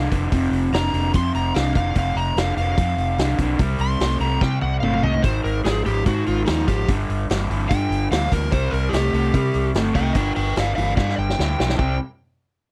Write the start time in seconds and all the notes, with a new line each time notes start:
0.11 F1 F2 D3, kick, open hi-hat
0.32 F1 F2 C3, kick, open hi-hat
0.51 F1, open hi-hat
0.73 F1 F2 D3 A#5, snare, open hi-hat
0.94 F1 F2 D3, open hi-hat
1.14 F2 C3 C6, kick, open hi-hat
1.35 F1 A#5, open hi-hat
1.54 C2 F2 D3 F5, snare, open hi-hat
1.75 F1 F2 D3 F5, kick, open hi-hat
1.95 F1 F2 C3 F5, kick, open hi-hat
2.15 F1 A#5, open hi-hat
2.36 F1 F2 D3 F5, snare, open hi-hat
2.57 F1 F2 D3 F5, open hi-hat
2.78 F2 C3, kick, open hi-hat
2.97 F1, open hi-hat
3.18 C2 F2 D3, snare, open hi-hat
3.38 B1 F2 D3, kick, open hi-hat
3.59 C2 C3 G3, kick, open hi-hat
3.79 C2 C6, open hi-hat
4.00 C2 C3 A3, snare, open hi-hat
4.20 C2 C3 A3 A#5, open hi-hat
4.41 C3 G3 G5, kick, snare
4.61 C2 F#5, high tom
4.80 G1 C3 A3 F5, mid tom
4.93 mid tom
5.03 C2 C3 A3 D#5, floor tom
5.14 floor tom
5.22 G#1 G#2 D#3 C5, kick, open hi-hat
5.44 G#1 A#4, open hi-hat
5.65 G#1 G#2 F3 G#4, snare, open hi-hat
5.85 G#1 G#2 F3 G4, open hi-hat
6.06 G#2 D#3 F#4, kick, open hi-hat
6.26 G#1 F4, open hi-hat
6.46 D#2 G#2 F3 D#4, snare, open hi-hat
6.67 G#1 G#2 F3 G4, kick, open hi-hat
6.88 G1 G2 D3, kick, open hi-hat
7.09 G1, open hi-hat
7.30 G1 G2 E3, snare, open hi-hat
7.50 G1 G2 E3, open hi-hat
7.69 G2 D3 G5, kick, open hi-hat
7.90 G1, open hi-hat
8.11 D2 G2 E3 F5, snare, open hi-hat
8.32 D2 G2 E3 A#4, kick, open hi-hat
8.52 C2 C3 G3 C5, kick, open hi-hat
8.71 C2 A#4, open hi-hat
8.89 C2 G4, open hi-hat
8.93 C3 A3, snare
9.13 C2 C3 A3, open hi-hat
9.34 C3 G3, kick, open hi-hat
9.54 C2, open hi-hat
9.74 G1 C3 A3, snare, open hi-hat
9.95 C2 C3 A3 D#5 G5, kick, open hi-hat
10.14 G1 G2 D3 A#4 G5, kick, open hi-hat
10.36 G1 A#4 G5, open hi-hat
10.56 G1 G2 E3 D5 F5, snare, open hi-hat
10.75 G1 G2 E3 D5 F5, open hi-hat
10.97 G2 D3 D5 F5, kick, snare
11.09 snare
11.18 G1 G5
11.30 snare
11.38 D2 G2 E3, snare
11.59 B1 G2 E3, snare
11.69 snare
11.78 C2 C3 G3 C4 G5, kick